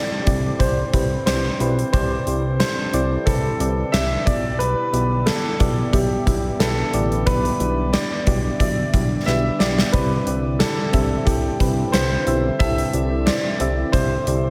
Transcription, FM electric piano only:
Already playing: C3 C4 E4 G4 A4 D5
0.26 C4 E4 G4 D5
0.59 C4 E4 G4 C5
0.93 C4 E4 G4 B4
1.26 C4 E4 G4 D5
1.60 C4 E4 G4 B4
1.93 C3 C4 E4 G4 D5
2.26 C4 E4 G4 C5
2.59 C4 E4 G4 A4
2.93 C4 E4 G4 D5
3.26 C4 E4 G4 B4
3.60 C4 E4 G4 D5
3.93 C4 E4 G4 D5
4.26 B2 B3 E4 G4 D5
4.93 B3 E4 G4 D5
5.26 B3 E4 G4 D5
5.59 B3 E4 G4 D5
5.93 B3 E4 G4 E5
6.26 B3 E4 G4 E5
6.60 B3 E4 G4 B4
6.93 B2 B3 E4 G4 D5
7.26 B3 E4 G4 D5
7.60 B3 E4 G4 D5
7.93 B3 E4 G4 D5
8.27 B3 E4 G4 D5
8.60 B3 E4 G4 E5
8.93 B3 E4 G4 D5
9.26 B3 E4 G4 B4
9.60 B3 E4 G4 D5
9.93 C3 C4 E4 G4 D5
10.26 C4 E4 G4 D5
10.60 C4 E4 G4 D5
10.93 C4 E4 G4 E5
11.26 C4 E4 G4 A4
11.60 C4 E4 G4 B4
11.93 C4 E4 G4 B4
12.27 C4 E4 G4 E5
12.60 C3 C4 E4 G4 A4
12.93 C4 E4 G4 D5
13.26 C4 E4 G4 C5
13.60 C4 E4 G4 E5
13.93 C4 E4 G4 D5
14.26 C4 E4 G4 D5

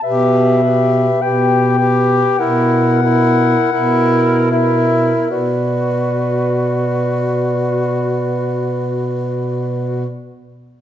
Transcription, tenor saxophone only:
0.04 G4
0.64 G4
1.22 G4
1.79 G4
2.39 E4
3.02 E4
3.72 E4
4.51 E4
5.29 F#4

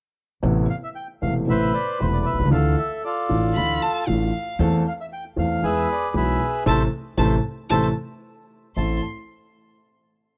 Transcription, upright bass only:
0.43 A1
1.22 E1
1.49 A1
2.01 E1
2.34 B1
2.39 C2
2.46 C#2
2.52 D2
3.30 A1
3.56 D2
4.08 A1
4.59 E2
5.37 E2
5.63 E2
6.14 B1
6.66 A1
7.18 A1
7.70 A1
8.77 A1

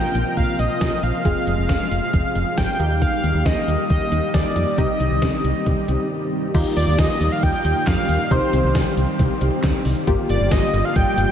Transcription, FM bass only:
0.15 A#1
0.37 A#1
0.59 A#1
0.81 C2
1.03 A#1
1.25 F1
1.47 F1
1.58 F1
1.69 F1
1.91 F1
2.14 F1
2.35 F1
2.58 G#1
2.79 D#2
3.24 D#2
3.35 D#2
3.46 D#2
3.68 D#2
3.90 D#2
4.12 D#2
4.34 D#2
4.56 F2
4.78 C2
5.00 C2
5.11 C2
5.22 C2
5.44 C2
5.67 C2
5.88 C2
6.55 D#2
6.77 D#2
6.88 D#2
6.99 D#2
7.21 D#2
7.43 D#2
7.65 D#2
7.87 F2
8.09 D#2
8.31 C2
8.53 C2
8.64 C2
8.75 C2
8.97 C2
9.20 C2
9.41 C2
9.64 D2
9.85 C2
10.07 G1
10.30 G1
10.41 G1
10.52 G1
10.74 G1
10.96 G1
11.18 G1

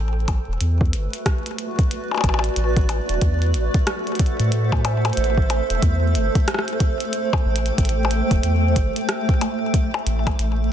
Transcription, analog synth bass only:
Already playing: A1
0.48 E1
0.61 E2
0.93 G1
2.24 A1
2.57 A1
3.09 E1
3.22 E2
3.54 A1
4.40 A2
5.17 A1
5.70 E1
5.82 E2
6.15 G1
7.46 A1
7.78 A1
8.31 E1
8.44 E2
8.76 G1
10.06 A1
10.39 A1

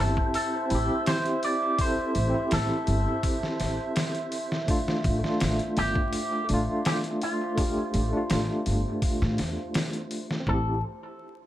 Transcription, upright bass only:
0.00 G1
0.71 A1
2.16 A1
2.52 A1
2.88 G1
3.60 A1
5.05 A1
5.42 A1
5.77 G1
6.50 A1
7.94 A1
8.31 A1
8.67 G1
9.22 A2
9.39 E2
10.47 A1

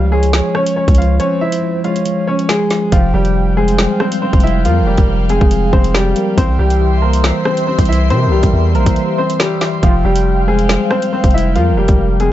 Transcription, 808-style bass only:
Already playing: C#2
0.88 C#2
2.92 F1
3.14 F1
4.33 F1
4.65 F2
4.81 F1
4.98 F1
5.08 F1
5.41 F1
5.73 F1
6.38 C2
6.59 C2
7.79 C2
8.10 C3
8.27 C2
8.43 C2
8.53 E2
8.75 A#1
8.86 C2
9.83 F1
10.05 F1
11.24 F1
11.56 F2
11.72 F1
11.89 F1
11.99 F1

